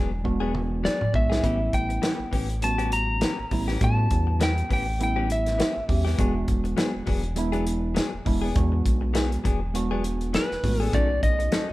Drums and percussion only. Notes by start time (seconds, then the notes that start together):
0.25 kick
0.55 mid tom
0.85 snare
1.01 mid tom
1.14 kick
1.32 snare
1.44 kick, closed hi-hat
1.73 kick, closed hi-hat
1.90 closed hi-hat
2.03 snare, closed hi-hat
2.33 kick, open hi-hat
2.50 closed hi-hat
2.62 closed hi-hat
2.79 closed hi-hat
2.92 closed hi-hat
3.21 snare, closed hi-hat
3.51 kick, open hi-hat
3.68 snare
3.81 kick, closed hi-hat
4.11 kick, closed hi-hat
4.41 snare, closed hi-hat
4.58 closed hi-hat
4.71 kick, open hi-hat
5.01 closed hi-hat
5.30 closed hi-hat
5.46 snare, closed hi-hat
5.60 snare, closed hi-hat
5.89 kick, open hi-hat
6.06 snare
6.19 kick, closed hi-hat
6.48 kick, closed hi-hat
6.65 closed hi-hat
6.78 snare, closed hi-hat
7.07 kick, open hi-hat
7.23 closed hi-hat
7.36 closed hi-hat
7.53 closed hi-hat
7.67 closed hi-hat
7.96 snare, closed hi-hat
8.26 kick, open hi-hat
8.56 kick, closed hi-hat
8.86 kick, closed hi-hat
9.15 snare, closed hi-hat
9.32 closed hi-hat
9.45 kick, closed hi-hat
9.75 closed hi-hat
10.04 closed hi-hat
10.21 closed hi-hat
10.34 snare, closed hi-hat
10.51 snare
10.64 kick, snare, open hi-hat
10.93 kick, closed hi-hat
11.23 kick, closed hi-hat
11.40 closed hi-hat
11.52 snare, closed hi-hat